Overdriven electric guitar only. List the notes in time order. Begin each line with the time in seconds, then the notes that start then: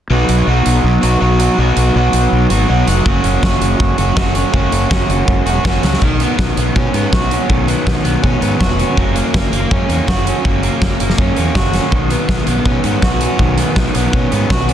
0.10 F#3 B3 D#4 F#4
0.47 F#3 B3 D#4 F#4
1.02 B3 D#4 F#4
1.21 F#3 B3 D#4 F#4
1.39 B3 D#4 F#4
1.58 F#3 B3 D#4 F#4
1.95 F#3 B3 D#4 F#4
2.50 B3 D#4 F#4
2.68 F#3 B3 D#4 F#4
2.87 B3 D#4 F#4
3.05 A#3 C#4 F#4
3.43 A#3 C#4 F#4
3.98 C#4 F#4
4.16 A#3 C#4 F#4
4.35 C#4 F#4
4.53 A#3 C#4 F#4
4.90 A#3 C#4 F#4
5.46 C#4 F#4
5.64 A#3 C#4 F#4
5.82 C#4 F#4
6.02 D#3
6.21 B3
6.39 D#3
6.57 B3
6.75 C#4
6.94 B3
7.13 F#4
7.31 C#4
7.49 D#3
7.68 B3
7.86 D#3
8.04 B3
8.23 C#4
8.41 B3
8.60 F#4
8.80 C#4
8.97 A#3
9.15 A#3
9.34 A#3
9.52 A#3
9.71 C#4
9.89 A#3
10.07 F#4
10.26 C#4
10.44 A#3
10.63 A#3
10.82 A#3
11.00 A#3
11.19 C#4
11.37 A#3
11.55 F#4
11.74 C#4
11.93 D#3
12.12 B3
12.30 D#3
12.48 B3
12.67 C#4
12.85 B3
13.03 F#4
13.21 C#4
13.40 D#3
13.59 B3
13.77 D#3
13.96 B3
14.14 C#4
14.32 B3
14.51 F#4
14.69 C#4